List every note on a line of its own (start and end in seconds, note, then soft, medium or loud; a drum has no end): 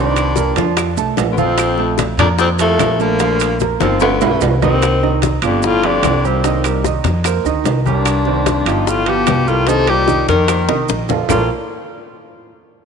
0.00 0.51 C2 medium
0.00 0.74 G2 medium
0.00 0.29 D#3 medium
0.00 0.29 C4 medium
0.00 0.74 D4 medium
0.00 0.30 D5 medium
0.16 high bongo soft
0.16 high conga soft
0.16 high timbale medium
0.16 claves medium
0.16 maracas medium
0.36 0.54 A#3 medium
0.36 0.54 A#4 medium
0.36 0.54 A#5 medium
0.36 high bongo medium
0.36 high conga medium
0.36 low timbale medium
0.36 maracas medium
0.56 0.94 F2 medium
0.56 0.90 F3 medium
0.56 0.90 F4 medium
0.56 0.90 F5 medium
0.56 high conga medium
0.56 high timbale medium
0.56 maracas soft
0.77 high bongo medium
0.77 high conga soft
0.77 high timbale medium
0.77 claves medium
0.77 maracas medium
0.97 1.16 C2 medium
0.97 1.31 A3 medium
0.97 1.31 A4 medium
0.97 1.31 A5 medium
0.97 high bongo soft
0.97 high conga soft
0.97 maracas medium
1.17 2.13 A#1 medium
1.17 high bongo soft
1.17 low bongo medium
1.17 high conga soft
1.17 high timbale medium
1.17 low timbale medium
1.17 maracas medium
1.31 1.40 D2 medium
1.31 1.40 B3 medium
1.38 1.99 F2 medium
1.38 1.71 F3 medium
1.38 1.99 C4 loud
1.38 1.71 F4 medium
1.38 1.72 F5 medium
1.38 high bongo soft
1.38 high conga medium
1.38 maracas soft
1.58 high bongo medium
1.58 high conga soft
1.58 high timbale medium
1.58 claves medium
1.58 maracas medium
1.78 2.12 A3 medium
1.78 2.12 A4 medium
1.78 2.12 A5 medium
1.78 high bongo soft
1.78 high conga soft
1.98 high bongo medium
1.98 high conga medium
1.98 high timbale medium
1.98 low timbale medium
1.98 maracas medium
2.17 2.75 F2 loud
2.17 2.28 F2 medium
2.17 2.52 A#3 medium
2.17 2.28 D4 medium
2.17 2.52 A#4 medium
2.17 2.52 A#5 medium
2.17 high conga soft
2.17 low conga medium
2.17 high timbale loud
2.17 claves medium
2.17 maracas soft
2.38 2.48 F2 medium
2.38 2.49 C4 medium
2.38 high bongo medium
2.38 high conga soft
2.38 maracas medium
2.59 3.01 C2 medium
2.59 2.93 F3 medium
2.59 3.02 A3 loud
2.59 2.93 F4 medium
2.59 2.93 F5 medium
2.59 high bongo soft
2.59 high conga soft
2.59 high timbale medium
2.59 maracas medium
2.79 3.74 A#1 medium
2.79 high bongo soft
2.79 low bongo medium
2.79 high conga medium
2.79 high timbale medium
2.79 low timbale medium
2.79 claves medium
2.79 maracas medium
2.99 3.60 D2 medium
2.99 3.17 A3 medium
2.99 3.61 A#3 medium
2.99 3.17 A4 medium
2.99 3.17 A5 medium
2.99 high bongo soft
2.99 maracas soft
3.19 3.54 F3 medium
3.19 3.54 F4 medium
3.19 3.54 F5 medium
3.19 high bongo medium
3.19 high conga soft
3.19 high timbale medium
3.19 maracas medium
3.40 high bongo soft
3.40 high conga soft
3.40 high timbale medium
3.40 claves medium
3.40 maracas medium
3.60 3.78 A#3 medium
3.60 3.78 A#4 medium
3.60 3.78 A#5 medium
3.60 high bongo medium
3.60 high conga medium
3.60 low timbale medium
3.60 maracas medium
3.80 4.18 G1 medium
3.80 4.00 D#2 medium
3.80 4.14 F3 medium
3.80 4.00 C4 medium
3.80 4.15 F4 medium
3.80 4.15 F5 medium
3.80 high conga loud
3.80 high timbale medium
3.80 maracas soft
4.00 4.57 D2 medium
4.00 4.58 B3 medium
4.00 high bongo medium
4.00 high conga soft
4.00 high timbale loud
4.00 claves medium
4.00 maracas medium
4.21 4.40 B1 medium
4.21 4.55 B3 medium
4.21 4.55 B4 medium
4.21 4.55 B5 medium
4.21 high bongo soft
4.21 high conga soft
4.21 low timbale loud
4.21 maracas medium
4.41 5.36 C2 loud
4.41 high bongo soft
4.41 low bongo medium
4.41 high conga soft
4.41 low timbale loud
4.41 maracas medium
4.62 5.19 D#2 medium
4.62 4.79 D#3 medium
4.62 5.19 C4 medium
4.62 4.79 D#4 medium
4.62 4.79 D#5 medium
4.62 high bongo soft
4.62 high conga medium
4.62 low timbale medium
4.62 maracas soft
4.82 high bongo medium
4.82 high timbale medium
4.82 claves medium
4.82 maracas medium
5.03 5.36 D#3 medium
5.03 5.36 D#4 medium
5.03 5.36 D#5 medium
5.03 high bongo soft
5.03 high conga soft
5.22 high bongo medium
5.22 high conga loud
5.22 high timbale medium
5.22 low timbale medium
5.22 maracas medium
5.42 5.99 G1 loud
5.42 5.76 F3 medium
5.42 5.67 D4 medium
5.42 5.77 F4 medium
5.42 5.77 G4 medium
5.42 high conga soft
5.42 high timbale loud
5.42 claves medium
5.42 maracas soft
5.46 5.66 F2 medium
5.62 5.86 A2 medium
5.62 5.87 F4 loud
5.62 high bongo medium
5.62 high conga soft
5.62 maracas medium
5.84 6.27 F2 medium
5.84 6.17 F3 medium
5.84 6.28 D4 loud
5.84 6.17 F4 medium
5.84 6.17 G4 medium
5.84 high bongo soft
5.84 high conga soft
5.84 high timbale medium
6.03 6.98 C2 medium
6.03 high bongo soft
6.03 low bongo medium
6.03 high conga medium
6.03 high timbale medium
6.03 low timbale medium
6.03 claves medium
6.03 maracas medium
6.25 6.85 D#2 medium
6.25 6.41 G3 medium
6.25 6.86 C4 medium
6.25 6.41 G4 medium
6.25 6.41 A#4 medium
6.25 high bongo soft
6.25 maracas soft
6.44 6.61 D#3 medium
6.44 6.61 D#4 medium
6.44 6.61 D#5 medium
6.44 high bongo medium
6.44 high conga soft
6.44 high timbale medium
6.44 maracas medium
6.64 6.81 G3 medium
6.64 6.81 G4 medium
6.64 6.82 A#4 medium
6.64 high bongo soft
6.64 high conga soft
6.64 high timbale medium
6.64 claves medium
6.64 maracas medium
6.84 7.18 D#3 medium
6.84 7.18 D#4 medium
6.84 7.18 D#5 medium
6.84 high bongo medium
6.84 high conga medium
6.84 low timbale medium
6.84 maracas medium
7.04 7.42 F2 loud
7.04 high conga medium
7.04 high timbale medium
7.04 maracas soft
7.24 7.42 A#3 medium
7.24 7.42 A#4 medium
7.24 7.42 C5 medium
7.24 high bongo medium
7.24 high conga soft
7.24 high timbale medium
7.24 claves medium
7.24 maracas medium
7.44 7.63 D2 medium
7.44 7.79 D#3 medium
7.44 7.79 D#4 medium
7.44 7.79 D#5 medium
7.44 high bongo soft
7.44 high conga soft
7.44 maracas medium
7.64 8.60 C2 medium
7.64 high bongo soft
7.64 low bongo medium
7.64 high conga soft
7.64 high timbale medium
7.64 low timbale medium
7.64 maracas medium
7.86 8.64 G2 medium
7.86 8.19 G3 medium
7.86 8.64 D4 medium
7.86 8.19 G4 medium
7.86 8.19 A#4 medium
7.86 high bongo soft
7.86 high conga medium
7.86 maracas soft
8.05 high bongo medium
8.05 high conga soft
8.05 high timbale medium
8.05 claves medium
8.05 maracas medium
8.25 8.59 D#3 medium
8.25 8.60 C4 medium
8.25 8.60 D5 medium
8.25 high bongo soft
8.25 high conga soft
8.46 high bongo medium
8.46 high conga medium
8.46 high timbale medium
8.46 low timbale medium
8.46 maracas medium
8.66 9.23 G1 loud
8.66 8.88 G2 medium
8.66 9.00 F3 medium
8.66 8.90 D#4 medium
8.66 9.00 F4 medium
8.66 9.00 G4 medium
8.66 high conga soft
8.66 high timbale medium
8.66 claves medium
8.66 maracas soft
8.87 9.08 A2 medium
8.87 9.11 F4 loud
8.87 high bongo medium
8.87 high conga soft
8.87 maracas medium
9.06 9.49 B2 medium
9.06 9.40 F3 medium
9.06 9.41 F4 medium
9.06 9.41 G4 medium
9.06 9.50 G4 medium
9.06 high bongo soft
9.06 high conga soft
9.06 high timbale medium
9.27 10.22 C2 medium
9.27 high bongo soft
9.27 low bongo medium
9.27 high conga medium
9.27 high timbale medium
9.27 low timbale medium
9.27 claves medium
9.27 maracas medium
9.47 9.68 A2 medium
9.47 9.64 G3 medium
9.47 9.70 F4 medium
9.47 9.64 G4 medium
9.47 9.64 A#4 medium
9.47 high bongo soft
9.47 maracas soft
9.67 9.90 C3 medium
9.67 9.84 D#3 medium
9.67 9.84 D#4 medium
9.67 9.91 A4 loud
9.67 9.85 D#5 medium
9.67 high bongo medium
9.67 high conga soft
9.67 high timbale medium
9.67 maracas medium
9.87 10.28 A#2 medium
9.87 10.04 G3 medium
9.87 10.04 G4 medium
9.87 10.28 G4 loud
9.87 10.04 A#4 medium
9.87 high bongo soft
9.87 high conga soft
9.87 high timbale medium
9.87 claves medium
10.07 10.41 D#3 medium
10.07 10.41 D#4 medium
10.07 10.41 D#5 medium
10.07 high bongo medium
10.07 high conga medium
10.07 low timbale medium
10.07 maracas medium
10.28 10.66 F2 medium
10.28 10.85 D#3 medium
10.28 10.85 A#4 medium
10.28 high conga medium
10.28 high timbale medium
10.28 maracas soft
10.47 10.64 A#3 medium
10.47 10.65 A#4 medium
10.47 10.65 C5 medium
10.47 high bongo medium
10.47 high conga soft
10.47 high timbale medium
10.47 claves medium
10.47 maracas medium
10.68 10.87 C2 medium
10.68 11.02 D#3 medium
10.68 11.02 D#4 medium
10.68 11.02 D#5 medium
10.68 high bongo medium
10.68 high conga soft
10.68 high timbale medium
10.88 11.24 A#1 medium
10.88 low bongo medium
10.88 high conga soft
10.88 maracas medium
11.09 11.26 F3 medium
11.09 11.26 F4 medium
11.09 11.26 A4 medium
11.09 low bongo medium
11.09 high conga medium
11.09 low timbale medium
11.09 maracas soft
11.28 11.48 A#1 medium
11.28 11.48 A2 medium
11.28 11.48 A#3 medium
11.28 11.48 F4 medium
11.28 11.49 F4 medium
11.28 11.48 A4 medium
11.28 11.48 A#4 medium
11.28 11.48 C5 medium
11.28 11.49 D5 medium
11.28 low bongo medium
11.28 low conga loud
11.28 low timbale medium
11.28 claves medium
11.28 maracas loud